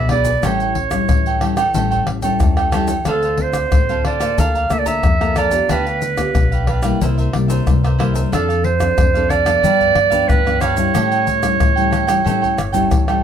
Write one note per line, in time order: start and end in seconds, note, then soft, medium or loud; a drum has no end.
0.00 0.34 B1 medium
0.00 0.41 B2 medium
0.00 0.11 B4 soft
0.00 0.10 D5 medium
0.00 0.10 E5 loud
0.09 0.31 B3 medium
0.09 0.31 D4 soft
0.09 0.26 E4 medium
0.09 0.26 G#4 medium
0.09 0.31 G#4 medium
0.09 0.27 B4 medium
0.09 0.45 D5 medium
0.09 0.25 D5 medium
0.09 pandeiro medium
0.09 tamborim medium
0.25 0.43 G#4 soft
0.25 0.43 B4 soft
0.25 0.42 D5 soft
0.25 pandeiro medium
0.25 shaker medium
0.25 surdo soft
0.43 0.99 A1 loud
0.43 1.07 A2 medium
0.43 0.75 G3 medium
0.43 0.75 C#4 medium
0.43 0.76 E4 medium
0.43 0.59 G4 medium
0.43 0.60 A4 medium
0.43 1.75 C#5 medium
0.43 0.60 C#5 medium
0.43 0.60 G5 medium
0.43 pandeiro medium
0.43 tamborim medium
0.43 shaker medium
0.43 surdo medium
0.60 0.76 A4 soft
0.60 0.77 C#5 soft
0.60 0.76 G5 soft
0.60 pandeiro soft
0.60 shaker soft
0.75 muted cavaquinho stroke soft
0.75 pandeiro medium
0.75 surdo soft
0.91 1.37 G3 medium
0.91 1.37 C#4 medium
0.91 1.37 E4 medium
0.91 pandeiro medium
0.91 tamborim medium
0.91 shaker medium
0.91 surdo soft
1.09 1.65 A1 medium
1.09 1.72 E3 soft
1.09 pandeiro medium
1.09 tamborim medium
1.09 shaker medium
1.09 surdo loud
1.26 1.41 A4 soft
1.26 1.41 C#5 soft
1.26 1.42 G5 soft
1.26 pandeiro soft
1.26 shaker soft
1.41 1.61 G3 medium
1.41 1.61 C#4 medium
1.41 1.62 E4 medium
1.41 1.57 G4 soft
1.41 1.57 A4 soft
1.41 1.57 C#5 soft
1.41 1.56 G5 medium
1.41 pandeiro medium
1.41 tamborim medium
1.57 1.74 A4 medium
1.57 1.74 C#5 medium
1.57 1.73 G5 medium
1.57 pandeiro medium
1.57 tamborim medium
1.57 shaker medium
1.74 2.03 A1 loud
1.74 2.38 A2 medium
1.74 2.20 G3 medium
1.74 2.20 C#4 medium
1.74 2.20 E4 medium
1.74 1.90 G4 medium
1.74 1.90 A4 medium
1.74 1.91 C#5 medium
1.74 1.90 G5 medium
1.74 pandeiro medium
1.74 shaker medium
1.74 surdo medium
1.91 2.06 A4 soft
1.91 2.06 C#5 soft
1.91 2.06 G5 soft
1.91 pandeiro soft
1.91 shaker soft
1.91 surdo soft
2.06 2.36 A1 medium
2.06 muted cavaquinho stroke soft
2.06 pandeiro medium
2.06 tamborim medium
2.22 2.68 G3 medium
2.22 2.68 C#4 medium
2.22 2.69 E4 medium
2.22 2.56 A4 soft
2.22 2.56 C#5 medium
2.22 2.55 G5 medium
2.22 pandeiro medium
2.22 shaker medium
2.22 surdo soft
2.40 2.97 E2 medium
2.40 3.04 E3 medium
2.40 pandeiro medium
2.40 tamborim medium
2.40 shaker medium
2.40 surdo loud
2.57 2.71 A4 soft
2.57 2.72 C#5 soft
2.57 2.72 G5 soft
2.57 pandeiro soft
2.57 tamborim medium
2.57 shaker soft
2.72 2.93 G3 medium
2.72 2.94 C#4 medium
2.72 2.94 E4 medium
2.72 2.88 G4 medium
2.72 2.88 A4 medium
2.72 2.88 C#5 medium
2.72 2.87 G5 medium
2.72 pandeiro medium
2.72 tamborim medium
2.72 shaker medium
2.88 3.06 A4 soft
2.88 3.05 C#5 soft
2.88 3.04 G5 soft
2.88 pandeiro medium
2.88 shaker medium
2.88 surdo soft
3.05 3.62 D2 medium
3.05 3.69 D3 medium
3.05 3.26 C4 medium
3.05 3.22 D4 medium
3.05 3.26 F4 medium
3.05 3.22 A4 medium
3.05 3.27 A4 medium
3.05 3.43 A4 medium
3.05 3.22 C5 medium
3.05 3.23 F5 medium
3.05 pandeiro medium
3.05 tamborim medium
3.05 shaker medium
3.05 surdo medium
3.22 3.38 A4 soft
3.22 3.39 C5 soft
3.22 3.39 F5 soft
3.22 pandeiro soft
3.22 shaker soft
3.37 3.70 C4 soft
3.37 3.70 F4 medium
3.37 3.70 A4 medium
3.37 4.06 C5 loud
3.37 muted cavaquinho stroke soft
3.37 pandeiro medium
3.37 surdo soft
3.53 pandeiro medium
3.53 tamborim medium
3.53 shaker medium
3.53 surdo soft
3.72 4.29 D2 medium
3.72 4.35 A2 medium
3.72 pandeiro medium
3.72 tamborim medium
3.72 shaker medium
3.72 surdo loud
3.89 4.17 C4 medium
3.89 4.17 F4 medium
3.89 4.17 A4 medium
3.89 4.04 A4 soft
3.89 4.05 C5 soft
3.89 4.04 F5 medium
3.89 pandeiro soft
3.89 shaker soft
4.05 4.21 D4 soft
4.05 4.21 A4 medium
4.05 4.20 C5 medium
4.05 4.41 D5 medium
4.05 4.19 F5 medium
4.05 pandeiro medium
4.05 tamborim medium
4.20 4.65 A#3 medium
4.20 4.65 F4 medium
4.20 4.65 A4 medium
4.20 4.37 A4 medium
4.20 4.37 C5 medium
4.20 4.36 F5 medium
4.20 pandeiro medium
4.20 tamborim medium
4.20 shaker medium
4.38 4.66 D2 loud
4.38 5.00 D3 medium
4.38 4.53 A4 medium
4.38 4.54 D5 medium
4.38 4.54 F5 medium
4.38 4.74 F5 loud
4.38 4.54 A#5 medium
4.38 pandeiro medium
4.38 shaker medium
4.38 surdo medium
4.55 4.71 D5 soft
4.55 4.71 F5 soft
4.55 4.70 A#5 medium
4.55 pandeiro soft
4.55 shaker soft
4.55 surdo soft
4.70 4.99 D2 medium
4.70 5.15 A#3 medium
4.70 5.15 F4 medium
4.70 5.15 A4 medium
4.70 4.81 E5 loud
4.70 muted cavaquinho stroke soft
4.70 pandeiro medium
4.70 tamborim medium
4.70 shaker medium
4.79 4.89 D5 medium
4.86 5.19 D5 medium
4.86 5.39 E5 loud
4.86 5.18 A#5 medium
4.86 pandeiro medium
4.86 shaker medium
4.86 surdo soft
5.03 5.60 F2 medium
5.03 5.66 D3 medium
5.03 pandeiro medium
5.03 tamborim medium
5.03 shaker medium
5.03 surdo medium
5.21 5.48 A#3 medium
5.21 5.48 F4 medium
5.21 5.48 A4 medium
5.21 5.36 D5 soft
5.21 5.36 F5 soft
5.21 5.36 A#5 medium
5.21 pandeiro soft
5.21 tamborim medium
5.21 shaker soft
5.36 5.52 A4 medium
5.36 5.52 D5 medium
5.36 5.70 D5 loud
5.36 5.52 F5 medium
5.36 5.51 A#5 medium
5.36 pandeiro medium
5.36 tamborim medium
5.36 shaker medium
5.51 5.97 B3 medium
5.51 5.97 F4 medium
5.51 5.97 G4 medium
5.51 5.69 D5 soft
5.51 5.68 F5 soft
5.51 5.68 A#5 soft
5.51 pandeiro medium
5.51 shaker medium
5.51 surdo soft
5.69 6.25 D2 loud
5.69 6.32 D3 medium
5.69 5.85 D4 medium
5.69 5.85 G4 medium
5.69 5.85 B4 medium
5.69 6.98 B4 medium
5.69 5.85 F5 medium
5.69 pandeiro medium
5.69 tamborim medium
5.69 shaker medium
5.69 surdo medium
5.86 6.01 G4 soft
5.86 6.01 F5 soft
5.86 pandeiro soft
5.86 shaker soft
6.02 muted cavaquinho stroke soft
6.02 pandeiro medium
6.02 shaker medium
6.18 6.79 B3 medium
6.18 6.79 F4 medium
6.18 6.79 G4 medium
6.18 pandeiro medium
6.18 tamborim medium
6.18 shaker medium
6.18 surdo soft
6.35 6.91 B1 medium
6.35 6.98 D3 medium
6.35 pandeiro medium
6.35 tamborim medium
6.35 shaker medium
6.35 surdo loud
6.52 6.66 G4 soft
6.52 6.67 B4 soft
6.52 6.67 F5 medium
6.52 pandeiro soft
6.52 shaker soft
6.67 6.83 D4 medium
6.67 6.83 G4 medium
6.67 6.83 B4 medium
6.67 6.81 F5 medium
6.67 pandeiro medium
6.67 tamborim medium
6.82 7.28 G3 medium
6.82 7.29 A#3 medium
6.82 7.29 E4 medium
6.82 7.00 G4 medium
6.82 6.99 B4 medium
6.82 6.99 F5 medium
6.82 pandeiro medium
6.82 tamborim medium
6.82 shaker medium
7.01 7.29 C2 medium
7.01 7.64 C3 medium
7.01 7.16 E4 medium
7.01 7.17 A#4 medium
7.01 7.17 C5 medium
7.01 7.16 E5 medium
7.01 pandeiro medium
7.01 shaker medium
7.01 surdo medium
7.18 7.33 A#4 soft
7.18 7.33 C5 soft
7.18 7.33 E5 medium
7.18 pandeiro soft
7.18 shaker soft
7.18 surdo soft
7.33 7.62 C2 medium
7.33 7.76 G3 medium
7.33 7.76 A#3 medium
7.33 7.77 E4 medium
7.33 muted cavaquinho stroke soft
7.33 pandeiro medium
7.33 tamborim medium
7.48 7.82 A#4 medium
7.48 7.82 C5 medium
7.48 7.81 E5 medium
7.48 pandeiro medium
7.48 shaker medium
7.48 surdo soft
7.67 8.23 C2 medium
7.67 8.29 G2 medium
7.67 pandeiro medium
7.67 tamborim medium
7.67 shaker medium
7.67 surdo loud
7.83 7.98 A#4 soft
7.83 7.99 C5 soft
7.83 7.98 E5 soft
7.83 pandeiro soft
7.83 tamborim medium
7.83 shaker soft
7.99 8.27 G3 medium
7.99 8.27 A#3 medium
7.99 8.14 E4 medium
7.99 8.28 E4 medium
7.99 8.15 A#4 medium
7.99 8.14 C5 medium
7.99 8.12 E5 medium
7.99 pandeiro medium
7.99 tamborim medium
8.14 8.31 A#4 soft
8.14 8.31 C5 soft
8.14 8.30 E5 soft
8.14 pandeiro medium
8.14 shaker medium
8.14 surdo soft
8.32 8.88 F2 loud
8.32 8.95 F3 medium
8.32 8.63 C4 medium
8.32 8.47 D4 medium
8.32 8.64 D4 medium
8.32 8.48 A4 medium
8.32 8.66 A4 loud
8.32 8.64 A4 medium
8.32 8.48 D5 medium
8.32 8.47 F5 medium
8.32 pandeiro medium
8.32 tamborim medium
8.32 shaker medium
8.32 surdo medium
8.48 8.63 A4 soft
8.48 8.64 D5 soft
8.48 8.64 F5 soft
8.48 pandeiro soft
8.48 shaker soft
8.64 9.31 C5 loud
8.64 muted cavaquinho stroke soft
8.64 pandeiro medium
8.80 9.09 C4 medium
8.80 9.09 D4 medium
8.80 9.09 A4 medium
8.80 pandeiro medium
8.80 tamborim medium
8.80 shaker medium
8.80 surdo soft
8.98 9.54 F2 loud
8.98 9.61 C3 medium
8.98 pandeiro medium
8.98 tamborim medium
8.98 shaker medium
8.98 surdo medium
9.14 9.43 C4 medium
9.14 9.43 D4 medium
9.14 9.29 A4 soft
9.14 9.43 A4 medium
9.14 9.29 D5 soft
9.14 9.29 F5 medium
9.14 pandeiro soft
9.14 shaker soft
9.29 9.45 D4 soft
9.29 9.46 A4 medium
9.29 10.29 D5 loud
9.29 9.45 D5 medium
9.29 9.44 F5 medium
9.29 pandeiro medium
9.29 tamborim medium
9.29 shaker medium
9.45 10.07 F3 medium
9.45 10.07 B3 medium
9.45 10.08 D4 medium
9.45 9.62 A4 medium
9.45 9.62 D5 medium
9.45 9.61 F5 medium
9.45 pandeiro medium
9.45 tamborim medium
9.45 shaker medium
9.63 9.91 G2 loud
9.63 10.26 G2 medium
9.63 9.78 D4 medium
9.63 9.79 G4 medium
9.63 9.79 B4 medium
9.63 9.78 F5 medium
9.63 pandeiro medium
9.63 shaker medium
9.63 surdo medium
9.80 9.94 G4 soft
9.80 9.94 B4 soft
9.80 9.95 F5 medium
9.80 pandeiro soft
9.80 shaker soft
9.80 surdo soft
9.95 10.24 G2 medium
9.95 muted cavaquinho stroke soft
9.95 pandeiro medium
9.95 tamborim medium
10.10 10.40 F3 medium
10.10 10.40 B3 medium
10.10 10.40 D4 medium
10.10 10.44 G4 soft
10.10 10.44 B4 medium
10.10 10.43 F5 medium
10.10 pandeiro medium
10.10 shaker medium
10.10 surdo soft
10.28 10.85 G2 medium
10.28 10.92 D3 medium
10.28 10.62 B4 loud
10.28 pandeiro medium
10.28 tamborim medium
10.28 shaker medium
10.28 surdo loud
10.45 10.73 F3 medium
10.45 10.74 B3 medium
10.45 10.74 D4 medium
10.45 10.60 G4 soft
10.45 10.60 B4 soft
10.45 10.60 F5 soft
10.45 pandeiro soft
10.45 tamborim medium
10.45 shaker soft
10.60 10.76 D4 medium
10.60 10.77 G4 medium
10.60 10.76 B4 medium
10.60 13.23 C#5 loud
10.60 10.75 F5 medium
10.60 pandeiro medium
10.60 tamborim medium
10.60 shaker medium
10.76 11.38 G3 medium
10.76 11.38 C#4 medium
10.76 11.38 E4 medium
10.76 10.93 G4 soft
10.76 10.93 B4 soft
10.76 10.93 F5 soft
10.76 pandeiro medium
10.76 shaker medium
10.76 surdo soft
10.94 11.57 A2 medium
10.94 11.51 A2 loud
10.94 11.10 G4 medium
10.94 11.10 A4 medium
10.94 11.10 C#5 medium
10.94 11.10 G5 medium
10.94 pandeiro medium
10.94 tamborim medium
10.94 shaker medium
10.94 surdo medium
11.11 11.25 A4 soft
11.11 11.26 C#5 soft
11.11 11.26 G5 soft
11.11 pandeiro soft
11.11 shaker soft
11.26 muted cavaquinho stroke soft
11.26 pandeiro medium
11.26 shaker medium
11.26 surdo soft
11.43 11.71 G3 medium
11.43 11.71 C#4 medium
11.43 11.71 E4 medium
11.43 pandeiro medium
11.43 tamborim medium
11.43 shaker medium
11.43 surdo soft
11.60 12.16 A2 medium
11.60 12.23 E3 medium
11.60 pandeiro medium
11.60 tamborim medium
11.60 shaker medium
11.60 surdo loud
11.76 12.05 G3 medium
11.76 12.05 C#4 medium
11.76 12.05 E4 medium
11.76 11.91 A4 soft
11.76 11.92 C#5 soft
11.76 11.91 G5 soft
11.76 pandeiro soft
11.76 shaker soft
11.91 12.07 G4 medium
11.91 12.08 A4 soft
11.91 12.07 C#5 medium
11.91 12.06 G5 soft
11.91 pandeiro medium
11.91 tamborim medium
11.91 shaker medium
12.07 12.20 G3 medium
12.07 12.20 C#4 medium
12.07 12.20 E4 medium
12.07 12.24 A4 medium
12.07 12.24 C#5 medium
12.07 12.23 G5 medium
12.07 pandeiro medium
12.07 tamborim medium
12.07 shaker medium
12.24 12.88 A2 medium
12.24 12.54 A2 medium
12.24 12.57 G3 medium
12.24 12.57 C#4 medium
12.24 12.57 E4 medium
12.24 12.40 G4 medium
12.24 12.41 A4 medium
12.24 12.41 C#5 medium
12.24 12.40 G5 medium
12.24 pandeiro medium
12.24 shaker medium
12.24 surdo medium
12.42 12.57 A4 soft
12.42 12.57 C#5 soft
12.42 12.57 G5 medium
12.42 pandeiro soft
12.42 shaker soft
12.42 surdo soft
12.57 12.88 G1 medium
12.57 muted cavaquinho stroke soft
12.57 pandeiro medium
12.57 tamborim medium
12.57 shaker medium
12.72 13.02 G3 medium
12.72 13.02 C#4 medium
12.72 13.02 E4 medium
12.72 13.06 A4 medium
12.72 13.06 C#5 medium
12.72 13.05 G5 medium
12.72 pandeiro medium
12.72 shaker medium
12.72 surdo soft
12.91 13.21 A1 medium
12.91 13.23 E3 medium
12.91 pandeiro medium
12.91 tamborim medium
12.91 shaker medium
12.91 surdo medium
13.08 13.23 G3 medium
13.08 13.23 C#4 medium
13.08 13.23 E4 medium
13.08 13.22 A4 soft
13.08 13.23 C#5 soft
13.08 13.23 G5 soft
13.08 pandeiro soft
13.08 tamborim medium
13.08 shaker soft